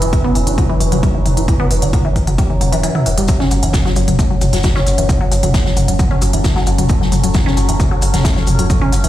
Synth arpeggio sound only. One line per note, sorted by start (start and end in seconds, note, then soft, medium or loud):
0.02 0.08 E3 medium
0.13 0.17 E3 medium
0.24 0.28 B3 loud
0.35 0.40 E3 medium
0.47 0.53 D3 medium
0.58 0.62 F#3 medium
0.69 0.76 E3 loud
0.80 0.85 E3 medium
0.92 0.98 F#3 medium
1.03 1.09 G3 medium
1.15 1.21 E3 medium
1.26 1.30 E3 medium
1.37 1.43 E3 medium
1.48 1.52 E3 medium
1.60 1.64 B3 loud
1.71 1.75 E3 medium
1.82 1.88 D3 medium
1.93 1.98 F#3 medium
2.05 2.11 E3 loud
2.16 2.20 E3 medium
2.27 2.33 F#3 medium
2.38 2.45 G3 medium
2.50 2.56 E3 medium
2.61 2.64 F#3 medium
2.72 2.76 E3 loud
2.83 2.90 E3 loud
2.95 2.99 E4 medium
3.06 3.09 E3 medium
3.18 3.22 G3 medium
3.29 3.33 F#3 medium
3.40 3.44 C#4 loud
3.51 3.55 F#3 medium
3.63 3.69 E3 medium
3.74 3.78 F#3 medium
3.85 3.91 F#3 loud
3.96 4.01 F#3 medium
4.08 4.14 F#3 medium
4.19 4.25 A3 medium
4.31 4.37 F#3 medium
4.41 4.46 F#3 medium
4.53 4.59 F#3 medium
4.64 4.68 F#3 medium
4.76 4.80 C#4 loud
4.87 4.91 F#3 medium
4.98 5.04 E3 medium
5.09 5.13 F#3 medium
5.21 5.27 F#3 loud
5.32 5.36 F#3 medium
5.43 5.49 F#3 medium
5.54 5.61 A3 medium
5.66 5.72 F#3 medium
5.77 5.81 F#3 medium
5.88 5.94 F#3 medium
5.99 6.04 F#3 medium
6.11 6.15 C#4 loud
6.22 6.26 F#3 medium
6.33 6.39 E3 medium
6.44 6.49 F#3 medium
6.56 6.62 F#3 loud
6.67 6.71 F#3 medium
6.79 6.85 F#3 medium
6.90 6.96 A3 medium
7.01 7.07 F#3 medium
7.12 7.16 F#3 medium
7.24 7.30 F#3 medium
7.35 7.39 F#3 medium
7.46 7.50 C#4 loud
7.57 7.61 F#3 medium
7.69 7.75 E3 medium
7.80 7.84 F#3 medium
7.91 7.97 F#3 loud
8.02 8.07 F#3 medium
8.14 8.20 F#3 medium
8.25 8.31 A3 medium
8.36 8.42 F#3 medium
8.47 8.52 F#3 medium
8.59 8.65 F#3 medium
8.70 8.74 F#3 medium
8.81 8.85 C#4 loud
8.92 8.97 F#3 medium
9.04 9.09 E3 medium